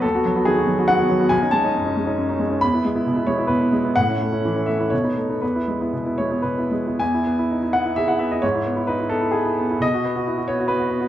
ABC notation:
X:1
M:3/4
L:1/16
Q:1/4=134
K:E
V:1 name="Grand piano"
A4 G2 z2 f4 | g2 a8- a2 | b6 c2 B4 | f6 e2 c4 |
B6 c2 B4 | g6 f2 e f e d | c4 B2 A2 G4 | d6 c2 B4 |]
V:2 name="Grand piano"
D,, [B,F] F, [B,F] D, [B,F] F, [B,F] D, [B,F] F, [B,F] | B,,, [CD] G, [CD] F,, [CD] G, [CD] F,, [CD] G, [CD] | E,, [B,E] G, [B,E] B,, [B,E] G, [B,E] B,, [B,E] G, [B,E] | A,, [CE] A, [CE] E, [CE] A, [CE] B,, [B,D] A, [B,D] |
E,, [B,E] G, [B,E] B,, [B,E] G, [B,E] B,, [B,E] G, [B,E] | E,, E B, E D E B, E G E B, E | G,, E B, E D E B, E B, E B, E | B,, F B, F E F B, F B, F B, F |]